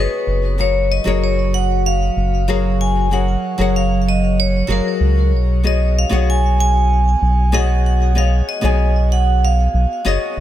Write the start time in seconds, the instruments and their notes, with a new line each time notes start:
Already playing: nylon-string guitar B3 F#4 G#4 C#5 D#5, vibraphone B4
0.27 analog synth bass F#1
0.58 nylon-string guitar F#3 F#4 G#4 A#4 F5, vibraphone C#5
0.92 vibraphone D#5
1.04 analog synth bass F#1, nylon-string guitar F#3 F#4 G#4 A#4 C#5
1.24 vibraphone C#5
1.54 vibraphone F#5
1.86 vibraphone F5
2.16 analog synth bass F#1
2.48 nylon-string guitar F#3 F#4 G#4 A#4 F5
2.81 vibraphone G#5
3.11 nylon-string guitar F#3 F#4 G#4 A#4 F#5, vibraphone F#5
3.58 analog synth bass F#1, nylon-string guitar F#3 F#4 G#4 A#4 F#5
3.76 vibraphone F5
4.02 vibraphone F5
4.08 vibraphone D#5
4.40 vibraphone C#5
4.67 analog synth bass F#1, nylon-string guitar F#3 F#4 G#4 A#4 F5
4.72 vibraphone A#4
5.00 analog synth bass C#2
5.32 analog synth bass B1
5.63 nylon-string guitar B3 F#4 G#4 C#5 D#5, vibraphone D#5
5.99 vibraphone F5
6.09 analog synth bass B1, nylon-string guitar B3 F#4 G#4 C#5 F#5
6.30 vibraphone G#5
6.60 vibraphone G#5
7.22 analog synth bass B1
7.52 nylon-string guitar B3 F#4 G#4 C#5 D#5, vibraphone F#5
7.86 vibraphone F#5
8.15 nylon-string guitar B3 F#4 G#4 C#5 D#5, vibraphone F5
8.49 vibraphone D#5
8.61 analog synth bass B1, nylon-string guitar B3 F#4 G#4 C#5 G#5
9.12 vibraphone F#5
9.45 vibraphone F5
9.74 analog synth bass B1
10.05 analog synth bass F#1, nylon-string guitar B3 F#4 G#4 C#5 D#5, vibraphone D#5
10.37 analog synth bass F#1